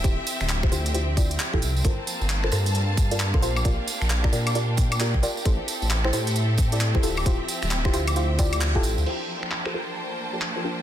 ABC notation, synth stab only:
X:1
M:4/4
L:1/16
Q:"Swing 16ths" 1/4=133
K:Gdor
V:1 name="Synth stab"
[EFGc] z4 [EFGc] [EFGc]2 [EFGc]2 [EFGd]3 [EFGA]3 | [FABc]4- [FABc] [FABc] [FABc]4- [FABc] [FABd] z [FABc] [FGBc] z | [FGBd] z4 [FGBd] [FGBd]2 [FGBd]4 [FGBd]2 [FGBd] z | [EGAc]4- [EGAc] [EGAc] [EGAc]4- [EGAc] [EGAd] z [EGAc] [EFGA] z |
[EFGc] z4 [EFGc] [EFGc]2 [EFGc]2 [EFGd]3 [EFGA]3 | [FGABc]4- [FGABc] [FGABc] [FGABc]4- [FGABc] [FGABd] z [FGABc] [DFGB] z |]